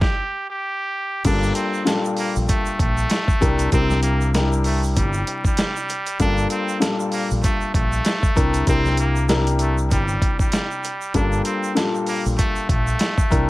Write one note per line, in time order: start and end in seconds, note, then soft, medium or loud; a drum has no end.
0.01 0.47 G4 medium
0.01 kick loud
0.01 snare medium
0.50 1.21 G4 medium
1.24 1.50 G1 loud
1.24 1.82 G2 loud
1.24 1.83 G3 medium
1.24 1.83 A#3 medium
1.24 1.53 D4 medium
1.24 1.83 F4 medium
1.24 1.83 A4 loud
1.24 kick loud
1.24 closed hi-hat medium
1.24 crash loud
1.24 shaker medium
1.43 shaker medium
1.55 1.84 C4 medium
1.55 closed hi-hat medium
1.55 shaker medium
1.74 shaker medium
1.85 3.30 G2 medium
1.85 3.31 A#2 medium
1.85 3.30 G3 medium
1.85 3.31 F4 medium
1.85 3.31 A4 loud
1.85 snare loud
1.85 closed hi-hat loud
1.85 shaker medium
2.05 shaker medium
2.17 2.34 A#3 medium
2.17 open hi-hat medium
2.17 shaker medium
2.36 2.47 A#1 medium
2.36 shaker medium
2.48 2.76 A3 medium
2.48 kick loud
2.48 closed hi-hat loud
2.48 shaker medium
2.66 shaker medium
2.79 3.05 A#1 medium
2.79 3.69 A3 medium
2.79 kick medium
2.79 closed hi-hat medium
2.98 shaker medium
3.10 snare loud
3.10 closed hi-hat medium
3.10 shaker medium
3.28 kick loud
3.28 shaker medium
3.40 3.67 C2 loud
3.40 3.70 C3 loud
3.40 3.70 G3 medium
3.40 3.70 D4 medium
3.40 3.70 E4 medium
3.40 3.70 A#4 loud
3.40 kick loud
3.40 closed hi-hat medium
3.40 shaker medium
3.59 closed hi-hat medium
3.59 shaker medium
3.72 4.98 C2 loud
3.72 4.30 C3 loud
3.72 4.30 G3 medium
3.72 4.01 C4 loud
3.72 4.30 D4 medium
3.72 4.31 E4 medium
3.72 4.31 A#4 loud
3.72 kick loud
3.72 closed hi-hat medium
3.72 shaker medium
3.90 snare soft
3.90 shaker medium
4.03 4.31 A#3 medium
4.03 closed hi-hat medium
4.03 shaker medium
4.21 shaker medium
4.34 5.91 C3 loud
4.34 5.91 G3 medium
4.34 5.91 D4 medium
4.34 5.91 E4 medium
4.34 5.91 A#4 loud
4.34 snare loud
4.34 closed hi-hat loud
4.34 shaker medium
4.53 shaker medium
4.64 4.81 A3 medium
4.64 open hi-hat medium
4.64 shaker medium
4.83 shaker medium
4.96 5.22 G1 loud
4.96 5.42 G3 medium
4.96 kick loud
4.96 closed hi-hat loud
4.96 shaker medium
5.13 shaker medium
5.27 closed hi-hat medium
5.44 6.17 G3 medium
5.44 kick medium
5.44 shaker medium
5.57 snare loud
5.57 closed hi-hat medium
5.57 shaker medium
5.76 shaker medium
5.89 closed hi-hat medium
5.89 shaker medium
6.07 closed hi-hat medium
6.07 shaker medium
6.19 6.45 G1 loud
6.19 6.77 G2 loud
6.19 6.78 G3 medium
6.19 6.78 A#3 medium
6.19 6.48 D4 loud
6.19 6.78 F4 loud
6.19 6.78 A4 loud
6.19 kick loud
6.19 closed hi-hat medium
6.19 shaker medium
6.38 shaker medium
6.50 6.79 C4 medium
6.50 closed hi-hat medium
6.50 shaker medium
6.69 shaker medium
6.80 8.25 G2 medium
6.80 8.25 A#2 medium
6.80 8.25 G3 medium
6.80 8.26 F4 medium
6.80 8.26 A4 loud
6.80 snare loud
6.80 closed hi-hat medium
6.80 shaker medium
7.00 shaker medium
7.12 7.29 A#3 medium
7.12 open hi-hat medium
7.12 shaker medium
7.31 7.41 A#1 medium
7.31 shaker medium
7.43 7.71 A3 medium
7.43 kick loud
7.43 closed hi-hat loud
7.43 shaker medium
7.61 shaker soft
7.74 7.99 A#1 medium
7.74 8.64 A3 medium
7.74 kick loud
7.74 closed hi-hat medium
7.92 shaker medium
8.05 snare loud
8.05 closed hi-hat loud
8.05 shaker medium
8.23 kick loud
8.23 shaker medium
8.35 8.62 C2 loud
8.35 8.65 C3 loud
8.35 8.65 G3 medium
8.35 8.65 D4 medium
8.35 8.65 E4 medium
8.35 8.65 A#4 loud
8.35 kick loud
8.35 closed hi-hat medium
8.35 shaker medium
8.54 closed hi-hat medium
8.54 shaker medium
8.67 9.93 C2 loud
8.67 9.25 C3 loud
8.67 9.25 G3 medium
8.67 8.96 C4 loud
8.67 9.25 D4 medium
8.67 9.26 E4 medium
8.67 9.26 A#4 loud
8.67 kick loud
8.67 closed hi-hat medium
8.67 shaker medium
8.85 snare soft
8.85 shaker medium
8.97 9.27 A#3 medium
8.97 closed hi-hat medium
8.97 shaker medium
9.16 shaker medium
9.28 10.86 C3 loud
9.28 10.86 G3 medium
9.28 10.86 D4 medium
9.28 10.86 E4 medium
9.28 10.86 A#4 loud
9.28 snare loud
9.28 closed hi-hat loud
9.28 shaker medium
9.47 closed hi-hat medium
9.47 shaker medium
9.59 9.77 A3 medium
9.59 closed hi-hat medium
9.59 shaker medium
9.78 shaker medium
9.91 10.16 G1 loud
9.91 10.37 G3 medium
9.91 kick loud
9.91 closed hi-hat loud
9.91 shaker medium
10.08 shaker medium
10.22 kick loud
10.22 closed hi-hat medium
10.39 11.11 G3 medium
10.39 kick medium
10.39 shaker medium
10.52 snare loud
10.52 closed hi-hat medium
10.52 shaker medium
10.71 shaker medium
10.84 closed hi-hat medium
10.84 shaker medium
11.01 shaker medium
11.14 11.40 G1 loud
11.14 11.72 G2 loud
11.14 11.72 G3 medium
11.14 11.72 A#3 medium
11.14 11.43 D4 medium
11.14 11.73 F4 medium
11.14 11.73 A4 loud
11.14 kick loud
11.14 closed hi-hat medium
11.14 shaker medium
11.33 shaker medium
11.45 11.73 C4 medium
11.45 closed hi-hat medium
11.45 shaker medium
11.64 shaker medium
11.75 13.20 G2 medium
11.75 13.20 A#2 medium
11.75 13.20 G3 medium
11.75 13.20 F4 medium
11.75 13.21 A4 loud
11.75 snare loud
11.75 closed hi-hat loud
11.75 shaker medium
11.95 shaker medium
12.06 12.24 A#3 medium
12.06 open hi-hat medium
12.06 shaker medium
12.26 12.36 A#1 medium
12.26 shaker medium
12.38 12.66 A3 medium
12.38 kick loud
12.38 closed hi-hat loud
12.38 shaker medium
12.56 shaker medium
12.69 12.94 A#1 medium
12.69 13.50 A3 medium
12.69 kick loud
12.69 closed hi-hat medium
12.87 shaker medium
12.99 snare loud
12.99 closed hi-hat loud
12.99 shaker medium
13.18 kick loud
13.18 shaker medium
13.30 13.50 C2 loud
13.30 13.50 C3 medium
13.30 13.50 G3 medium
13.30 13.50 D4 medium
13.30 13.50 E4 medium
13.30 13.50 A#4 loud
13.30 kick loud
13.30 closed hi-hat medium
13.30 shaker medium